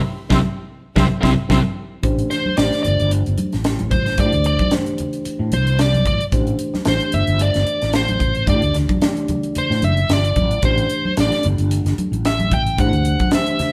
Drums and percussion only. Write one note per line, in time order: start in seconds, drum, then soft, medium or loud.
0.30 kick medium
0.30 snare medium
0.30 high conga loud
0.96 kick medium
0.96 snare medium
0.96 high conga medium
1.23 kick medium
1.23 snare medium
1.23 high conga medium
1.50 kick medium
1.50 snare medium
1.50 high conga medium
2.03 kick medium
2.03 closed hi-hat medium
2.19 closed hi-hat soft
2.31 snare soft
2.31 closed hi-hat medium
2.46 high conga medium
2.57 snare loud
2.57 closed hi-hat medium
2.73 snare soft
2.73 closed hi-hat soft
2.85 closed hi-hat medium
2.85 low conga medium
3.00 closed hi-hat soft
3.11 closed hi-hat medium
3.26 closed hi-hat soft
3.38 closed hi-hat medium
3.38 high conga medium
3.53 snare soft
3.53 closed hi-hat soft
3.64 snare loud
3.64 closed hi-hat medium
3.79 closed hi-hat soft
3.79 high conga medium
3.91 kick medium
3.91 closed hi-hat soft
3.91 high conga medium
3.91 low conga medium
4.06 snare soft
4.06 closed hi-hat soft
4.18 kick medium
4.18 closed hi-hat medium
4.32 closed hi-hat soft
4.44 closed hi-hat medium
4.59 kick medium
4.59 closed hi-hat soft
4.59 high conga medium
4.71 snare medium
4.71 closed hi-hat medium
4.86 closed hi-hat soft
4.98 closed hi-hat medium
4.98 low conga medium
5.13 closed hi-hat soft
5.25 closed hi-hat medium
5.52 closed hi-hat medium
5.52 high conga medium
5.67 closed hi-hat soft
5.79 snare loud
5.79 closed hi-hat medium
5.94 closed hi-hat soft
5.94 high conga medium
6.06 kick medium
6.06 closed hi-hat medium
6.06 high conga medium
6.06 low conga medium
6.21 closed hi-hat soft
6.32 kick medium
6.32 closed hi-hat medium
6.47 closed hi-hat soft
6.59 closed hi-hat medium
6.74 snare soft
6.74 high conga medium
6.85 snare loud
6.85 closed hi-hat medium
7.00 closed hi-hat soft
7.12 closed hi-hat medium
7.12 low conga medium
7.27 closed hi-hat soft
7.39 closed hi-hat medium
7.54 snare soft
7.54 closed hi-hat soft
7.67 closed hi-hat medium
7.82 snare soft
7.82 closed hi-hat soft
7.93 snare loud
7.93 closed hi-hat medium
8.08 closed hi-hat soft
8.08 high conga medium
8.19 kick medium
8.19 closed hi-hat soft
8.19 high conga medium
8.19 low conga medium
8.35 closed hi-hat soft
8.47 kick medium
8.47 closed hi-hat medium
8.62 closed hi-hat soft
8.74 snare soft
8.74 closed hi-hat medium
8.74 low conga medium
8.89 kick medium
8.89 closed hi-hat soft
8.89 high conga medium
9.02 snare loud
9.02 closed hi-hat medium
9.17 closed hi-hat soft
9.28 closed hi-hat medium
9.28 high conga medium
9.28 low conga medium
9.43 closed hi-hat soft
9.55 closed hi-hat medium
9.55 low conga medium
9.71 snare soft
9.82 closed hi-hat medium
9.82 high conga medium
9.97 closed hi-hat soft
10.09 snare loud
10.09 closed hi-hat medium
10.25 closed hi-hat soft
10.36 kick medium
10.36 closed hi-hat medium
10.36 high conga medium
10.36 low conga medium
10.51 closed hi-hat soft
10.63 kick loud
10.63 closed hi-hat medium
10.78 closed hi-hat soft
10.90 closed hi-hat medium
11.05 high conga medium
11.17 snare medium
11.17 closed hi-hat medium
11.32 snare soft
11.32 closed hi-hat soft
11.43 closed hi-hat medium
11.43 low conga medium
11.58 closed hi-hat soft
11.71 closed hi-hat medium
11.86 snare soft
11.86 closed hi-hat soft
11.98 closed hi-hat medium
11.98 high conga medium
12.13 closed hi-hat soft
12.25 snare loud
12.25 closed hi-hat medium
12.40 closed hi-hat soft
12.40 high conga medium
12.51 kick medium
12.51 closed hi-hat medium
12.51 high conga medium
12.51 low conga medium
12.67 closed hi-hat soft
12.78 kick loud
12.78 closed hi-hat medium
12.93 closed hi-hat soft
13.05 closed hi-hat medium
13.19 kick medium
13.19 closed hi-hat soft
13.19 high conga medium
13.31 snare loud
13.31 closed hi-hat medium
13.46 closed hi-hat soft
13.59 snare soft
13.59 closed hi-hat medium
13.59 low conga medium